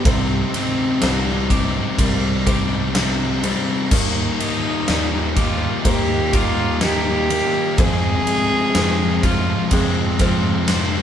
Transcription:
Already playing: G4
0.04 C2 C3 G3 C4 D#4 C5, kick, ride
0.54 C3 G3 C4 D#4, snare, ride
1.01 C2 C3 G3 C4 D4 D#4 C5, snare, ride
1.50 C3 G3 C4 D#4 G4, kick, ride
1.98 C2 C3 G3 C4 D#4 A#4, kick, ride
2.46 C3 G3 C4 D#4 G4 C5, kick, ride
2.95 C3 G3 C4 D#4, snare, ride
3.43 C3 G3 C4 D#4 C5, ride
3.91 D#2 D#3 G3 A#3 D#4 A#4, kick, crash
4.39 D#3 G3 A#3 D#4, ride
4.88 D#2 D#3 G3 A#3 D#4 D5, snare, ride
5.36 D#3 G3 A#3 D#4 F4 G4, kick, ride
5.84 D#2 D#3 G3 A#3 D#4 G4 C5, kick, ride
6.33 D#3 G3 A#3 D#4 F4 G4 A#4, kick, ride
6.81 D#3 G3 A#3 D#4 G4, snare, ride
7.30 D#3 G3 A#3 D#4 A#4, ride
7.78 F2 C3 F3 G#3 C4 G#4 C5, kick, ride
8.27 F2 C3 F3 G#3 C4, ride
8.75 F2 C3 F3 G#3 C4 C5, snare, ride
9.23 F2 C3 F3 G#3 C4 F4, kick, ride
9.71 F2 C3 F3 G#3 C4 G#4, kick, ride
10.19 F2 C3 F3 G#3 C4 F4 C5, kick, ride
10.68 F2 C3 F3 G#3 C4, snare, ride

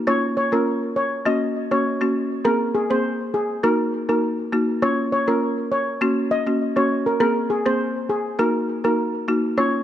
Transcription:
0.07 A#3 C#4 F4 C#5
0.37 C#5
0.52 A#3 C#4 F4 A#4
0.96 C#5
1.26 A#3 C#4 F#4 D#5
1.71 A#3 C#4 F#4 C#5
2.01 A#3 C#4 F#4
2.45 A#3 C4 G#4 A#4
2.75 G#4
2.90 A#3 C4 G#4 C5
3.34 G#4
3.63 A#3 D#4 F#4 A#4
4.09 A#3 D#4 F#4 A#4
4.52 A#3 D#4 F#4
4.82 A#3 C#4 F4 C#5
5.12 C#5
5.27 A#3 C#4 F4 A#4
5.72 C#5
6.01 A#3 C#4 F#4
6.31 D#5
6.47 A#3 C#4 F#4
6.76 A#3 C#4 F#4 C#5
7.06 A#4
7.20 A#3 C4 G#4 A#4
7.50 G#4
7.66 A#3 C4 G#4 C5
8.09 G#4
8.39 A#3 D#4 F#4 A#4
8.84 A#3 D#4 F#4 A#4
9.28 A#3 D#4 F#4
9.57 A#3 C#4 F4 C#5

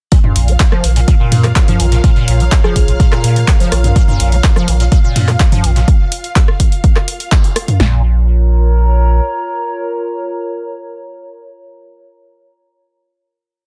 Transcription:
0.12 A#2 F4 F5, kick, closed hi-hat
0.24 A#2, mid tom
0.36 A#1, closed hi-hat, open hi-hat
0.42 A#4
0.48 A#3, closed hi-hat
0.60 kick, snare, clap, closed hi-hat
0.72 F3, cross-stick
0.84 A#1 D#3, closed hi-hat, open hi-hat
0.96 A#2 A#5, closed hi-hat
1.08 A#2, kick, closed hi-hat
1.15 C#5
1.20 A#2
1.32 A#2, mid tom, open hi-hat
1.44 A#3, cross-stick, clap, closed hi-hat
1.56 kick, snare, clap, closed hi-hat
1.68 F3, closed hi-hat, mid tom
1.80 A#1 D#3, closed hi-hat, open hi-hat
1.92 A#2, snare, closed hi-hat
2.04 A#2, kick, closed hi-hat
2.16 A#2, closed hi-hat
2.28 A#1, closed hi-hat, open hi-hat
2.40 A#3, closed hi-hat
2.52 kick, snare, clap, closed hi-hat
2.64 F3 G#4, cross-stick
2.76 A#1 D#3, kick, closed hi-hat, open hi-hat
2.88 A#2, closed hi-hat
3.00 A#2, kick, closed hi-hat
3.12 A#2, cross-stick, clap
3.24 A#2, closed hi-hat, open hi-hat
3.36 A#3, closed hi-hat
3.48 kick, snare, clap, closed hi-hat
3.60 F3, closed hi-hat
3.72 A#1 D#3, cross-stick, closed hi-hat, open hi-hat
3.84 A#2, closed hi-hat, mid tom
3.96 A#2, kick, closed hi-hat
4.08 A#2, mid tom
4.20 A#1, closed hi-hat, open hi-hat
4.32 A#3, closed hi-hat
4.44 kick, snare, clap, closed hi-hat
4.56 F3, cross-stick
4.68 A#1 D#3, closed hi-hat, open hi-hat
4.80 A#2, closed hi-hat
4.92 A#2, kick, closed hi-hat
5.04 A#2
5.16 A#2, mid tom, open hi-hat
5.28 A#3, cross-stick, clap, closed hi-hat
5.40 kick, snare, clap, closed hi-hat
5.52 F3, closed hi-hat, mid tom
5.64 A#1 D#3, closed hi-hat, open hi-hat
5.76 A#2, snare, closed hi-hat
5.88 kick, closed hi-hat
6.12 open hi-hat
6.24 closed hi-hat
6.36 kick, clap, closed hi-hat
6.48 cross-stick
6.60 kick, open hi-hat
6.72 closed hi-hat
6.84 kick, closed hi-hat
6.96 cross-stick, clap
7.08 open hi-hat
7.20 closed hi-hat
7.32 kick, clap, closed hi-hat
7.44 closed hi-hat
7.56 cross-stick, open hi-hat
7.68 closed hi-hat, mid tom
7.80 A#1 A#2 F4, snare
7.87 A#4
7.95 C#5
8.01 A#5

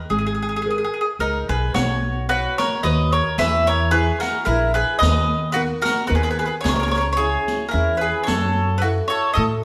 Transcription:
0.10 G#1 G#3 G#4
0.19 G#4
0.27 G#4
0.35 G#4
0.42 G#4
0.49 G#4
0.56 G#4
0.62 G#4
0.66 A#4 B4
0.71 G#4
0.78 G#4
0.84 G#4
0.94 G#4
1.01 G#4
1.19 C#2 D#4 G#4 A#4 B4
1.49 B1 G#4 B4
1.74 B1 B3 F#4 C#5, riq
2.29 F#4 B4 C#5
2.58 A#4 C#5, riq
2.83 D#2 F#4 B4 C#5 D#5
3.12 A#4 C#5
3.38 E2 E3 B4 E5, riq
3.67 A#4 C#5
3.91 E4 G#4 B4
4.20 F#4 A#4, riq
4.45 A#1 E4 G#4 A#4 B4
4.74 G#4 B4
4.99 D#2 D#3 B4 D#5
5.03 riq
5.52 B3 D#4 F#4 A#4 B4
5.82 F#4 A#4, riq
6.07 D#2 B3 D#4 F#4 A#4 B4
6.15 G#4 B4
6.23 G#4 B4
6.31 G#4 B4
6.39 G#4 B4
6.46 G#4 B4
6.61 G#4 C#5
6.65 C#2 C#3, riq
6.69 A#4 C#5
6.76 A#4 C#5
6.83 C#5
6.88 A#4 C#5
6.94 A#4 C#5, riq
7.01 A#4
7.13 C#5
7.17 C#4 E4 G#4
7.48 riq
7.69 E4 A#4
7.73 E2 C#4 E4 G#4
7.97 B4
8.01 G#4
8.23 A4 C#5
8.28 F#2 F#3, riq
8.78 F#4 B4
8.83 E4 F#4 A4
9.08 A4 C#5
9.34 A2 A4 D#5
9.38 E4 F#4 A4

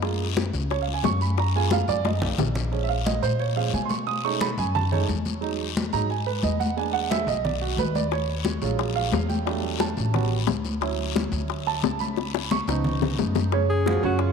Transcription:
Already playing: F#2
0.02 G#3 A#3 F4, high bongo, high conga, long guiro
0.20 high conga
0.36 high bongo, high conga, short guiro
0.53 C#2, high bongo, high conga, short guiro
0.70 C#5, high bongo, high conga, long guiro
0.82 F5
0.88 high bongo, high conga
0.94 G#5
1.03 F#2 C#6, high bongo, low bongo, high conga, short guiro
1.21 B5, high bongo, short guiro
1.38 A#5, high bongo, high conga, long guiro
1.55 G#3 A#3 F4 G#5, high conga
1.71 F5, high bongo, high conga, short guiro
1.88 F#2 D5, high bongo, high conga, short guiro
2.05 D#5, high bongo, high conga, long guiro
2.21 B1, high bongo, low conga
2.38 A#1, high bongo, low bongo, low conga, short guiro
2.55 high bongo, low conga, short guiro
2.72 F3 G#3 C#4, high conga, long guiro
2.84 E5
2.89 F5, high conga
3.06 D#5, high conga, short guiro
3.22 A#2 C5, high conga, short guiro
3.40 C#5, high conga, long guiro
3.56 F3 G#3 C#4 F5, high conga
3.73 B2 G#5, high conga, short guiro
3.85 C6
3.89 C#6, high conga, short guiro
4.07 D#6, high conga, long guiro
4.24 G#3 A3 C#4 D#4 C#6, high conga
4.40 B5, high conga, short guiro
4.57 F#2 G#5, high conga, short guiro
4.75 A5, high conga, low conga, long guiro
4.92 G#3 A3 C#4 D#4 C#5, high conga, low conga
5.08 E2, high conga, short guiro
5.25 high conga, short guiro
5.41 F#3 G#3 D#4, high conga, long guiro
5.60 high conga
5.76 high conga, short guiro
5.93 G#2 F#3 G#3 D#4 A#5, high conga, short guiro
6.10 G#5, high conga, long guiro
6.27 B4, high conga
6.43 E2 D#5, high conga, short guiro
6.60 F#5, high conga, short guiro
6.77 G#3 A#3 D4 G#5, high conga, long guiro
6.93 F#5, high conga
7.11 E5, high conga, short guiro
7.27 B1 D#5, high conga, short guiro
7.45 D5, high conga, low conga, long guiro
7.61 F#4, high conga
7.77 D#2 B4, high conga, short guiro
7.95 D5, high conga, short guiro
8.11 C#5, high bongo, high conga, long guiro
8.28 high conga
8.45 high bongo, high conga, short guiro
8.62 A#1 F#3 G#3 C#4 F4, high conga, short guiro
8.79 high bongo, high conga, long guiro
8.96 F5, high conga
9.12 E2, high bongo, low bongo, high conga, short guiro
9.29 G5, high conga, short guiro
9.45 F#3 G3 A3 D4, high bongo, high conga, long guiro
9.64 high bongo, high conga
9.80 A5, high bongo, high conga, short guiro
9.97 A1, high bongo, high conga, short guiro
10.14 G3 B3 C#4 F#4, high bongo, high conga, low conga, long guiro
10.32 high conga
10.47 D2, high bongo, low bongo, high conga, short guiro
10.65 high bongo, high conga, short guiro
10.81 F#3 C#4 E4, high bongo, high conga, long guiro
10.99 high conga
11.15 high bongo, high conga, short guiro
11.32 D2, high conga, short guiro
11.48 high bongo, high conga, long guiro
11.67 A5, high conga
11.82 C#2, high bongo, low bongo, high conga, short guiro
11.99 B5, high conga, short guiro
12.16 high bongo, high conga, long guiro
12.34 high bongo, high conga
12.51 C#6, low bongo, high conga, short guiro
12.68 C#2 F3 B3 D#4, high bongo, short guiro
12.84 high conga, low conga, long guiro
13.02 low bongo, high conga, low conga
13.18 F#2, low bongo, high conga, short guiro
13.35 low bongo, high conga, short guiro
13.52 C#3 C#4 C#5, high bongo, high conga
13.70 G#4, high conga
13.86 F3 F4 F#4, high bongo, high conga
14.03 F#2 C#3 C#4 F#4 C#5, high conga
14.19 F4, high bongo, high conga

